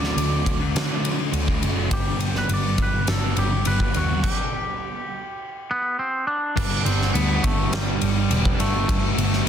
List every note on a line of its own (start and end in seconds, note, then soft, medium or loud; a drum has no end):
0.00 0.13 D2 medium
0.00 0.14 D3 medium
0.00 0.16 F#3 medium
0.00 0.16 A3 medium
0.00 0.18 D4 medium
0.00 0.17 D4 medium
0.00 1.59 D5 medium
0.00 snare soft
0.16 0.44 D2 medium
0.16 0.44 D3 medium
0.16 0.44 F#3 loud
0.16 0.45 A3 loud
0.16 0.47 D4 loud
0.16 ride medium
0.29 0.45 A3 medium
0.29 0.46 D4 medium
0.45 0.73 D2 medium
0.45 0.89 D3 medium
0.45 0.59 F#3 medium
0.45 0.59 A3 medium
0.45 0.58 D4 medium
0.45 muted distorted electric guitar stroke soft
0.45 kick medium
0.45 ride medium
0.59 0.89 A3 medium
0.59 0.86 D4 medium
0.59 muted overdriven electric guitar stroke medium
0.75 1.30 D3 medium
0.75 snare loud
0.75 ride loud
0.89 1.18 F#3 medium
0.89 1.17 A3 medium
0.89 1.17 D4 medium
1.05 ride medium
1.18 1.33 A3 medium
1.18 1.34 D4 medium
1.18 muted overdriven electric guitar stroke medium
1.32 1.60 D2 medium
1.32 1.61 D3 loud
1.32 1.62 F#3 loud
1.32 1.62 A3 loud
1.32 1.63 D4 loud
1.32 ride loud
1.47 1.62 A3 medium
1.47 1.63 D4 medium
1.47 kick medium
1.62 1.89 F#1 medium
1.62 1.89 D3 medium
1.62 1.76 F#3 medium
1.62 1.75 A3 medium
1.62 1.74 D4 medium
1.62 ride medium
1.75 1.90 F#3 medium
1.75 1.89 A3 medium
1.75 1.89 D4 medium
1.90 2.46 G1 loud
1.90 2.34 G2 medium
1.90 2.34 D3 loud
1.90 2.06 G3 loud
1.90 2.05 B3 loud
1.90 2.04 D4 loud
1.90 2.37 G4 loud
1.90 kick loud
1.90 ride loud
2.06 2.35 G3 medium
2.06 2.34 B3 medium
2.06 2.33 D4 medium
2.20 2.48 G2 medium
2.20 2.49 D3 medium
2.20 2.50 G3 medium
2.20 ride medium
2.35 2.50 G3 medium
2.35 2.49 B3 medium
2.35 2.50 D4 medium
2.35 2.51 B4 medium
2.35 snare soft
2.49 2.77 G1 medium
2.49 3.08 G2 medium
2.49 2.77 D3 loud
2.49 2.78 G3 loud
2.49 2.79 B3 loud
2.49 2.79 D4 loud
2.49 ride loud
2.54 2.81 D5 loud
2.64 2.77 D3 soft
2.64 2.78 G3 medium
2.78 3.06 G1 medium
2.78 2.93 D3 medium
2.78 2.93 G3 medium
2.78 2.92 B3 medium
2.78 2.92 D4 medium
2.78 muted distorted electric guitar stroke medium
2.78 kick medium
2.78 ride medium
2.82 3.08 B4 loud
2.92 3.22 D3 medium
2.92 3.20 G3 medium
2.92 muted overdriven electric guitar stroke medium
3.07 3.35 G1 medium
3.07 3.38 A4 loud
3.07 snare loud
3.07 ride medium
3.22 3.50 D3 medium
3.22 3.51 G3 medium
3.22 3.51 B3 medium
3.22 3.51 D4 medium
3.37 3.64 G1 loud
3.37 3.68 G4 medium
3.37 ride medium
3.48 3.64 D3 medium
3.48 3.65 G3 medium
3.52 muted overdriven electric guitar stroke medium
3.65 3.93 G1 medium
3.65 4.22 G2 loud
3.65 3.94 D3 loud
3.65 3.95 G3 loud
3.65 3.95 B3 loud
3.65 3.96 D4 loud
3.65 3.96 B4 loud
3.65 ride medium
3.79 3.93 D3 medium
3.79 3.94 G3 medium
3.79 kick medium
3.93 4.22 D#2 medium
3.93 4.21 G2 medium
3.93 4.23 D3 medium
3.93 4.10 G3 medium
3.93 4.09 B3 medium
3.93 4.26 F#4 medium
3.93 ride medium
3.97 4.08 D4 medium
4.09 4.22 D3 medium
4.09 4.23 G3 medium
4.09 4.23 B3 medium
4.09 4.22 D4 medium
4.23 5.94 G4 medium
4.23 kick loud
4.23 crash loud
5.71 5.99 B3 loud
5.99 6.27 C4 loud
6.27 6.55 D4 loud
6.56 6.81 G1 medium
6.56 8.86 G2 loud
6.56 7.14 D3 medium
6.56 6.88 G3 medium
6.56 6.87 B3 loud
6.56 6.84 D4 loud
6.56 6.86 D4 loud
6.56 kick loud
6.56 crash loud
6.85 7.10 G1 medium
6.85 7.15 D3 medium
6.85 7.15 G3 medium
6.85 7.16 B3 medium
6.85 7.13 C4 medium
6.85 7.17 D4 medium
6.85 ride medium
7.02 snare soft
7.14 7.38 D2 medium
7.14 7.71 G2 medium
7.14 7.73 D3 medium
7.14 7.45 G3 medium
7.14 7.44 B3 loud
7.14 7.44 B3 medium
7.14 7.43 D4 medium
7.14 ride loud
7.43 7.68 G1 medium
7.43 7.72 D3 medium
7.43 8.30 G3 medium
7.43 7.73 A3 loud
7.43 8.29 B3 medium
7.43 8.31 D4 medium
7.43 kick loud
7.43 ride medium
7.71 7.97 G1 medium
7.71 8.28 G2 loud
7.71 8.02 D3 loud
7.71 8.62 G3 loud
7.71 8.01 G3 loud
7.71 snare loud
7.71 ride loud
8.01 8.26 G1 medium
8.01 8.29 D3 medium
8.01 8.32 G3 medium
8.01 ride medium
8.29 8.54 E1 medium
8.29 8.86 G2 medium
8.29 8.86 D3 medium
8.29 8.60 G3 medium
8.29 8.57 B3 medium
8.29 8.58 D4 medium
8.29 ride loud
8.45 kick medium
8.58 8.84 G1 medium
8.58 8.88 D3 medium
8.58 8.87 G3 medium
8.58 9.42 A3 medium
8.58 8.87 B3 medium
8.58 8.88 D4 medium
8.58 ride medium
8.86 9.13 G1 loud
8.86 9.45 G2 medium
8.86 9.44 D3 loud
8.86 9.18 G3 loud
8.86 9.17 B3 medium
8.86 9.17 D4 loud
8.86 kick loud
8.86 ride loud
9.17 9.41 G1 medium
9.17 9.46 D3 medium
9.17 9.46 G3 medium
9.17 9.45 B3 medium
9.17 9.47 D4 medium
9.17 ride medium
9.33 snare soft
9.45 9.49 G2 medium
9.45 9.49 D3 medium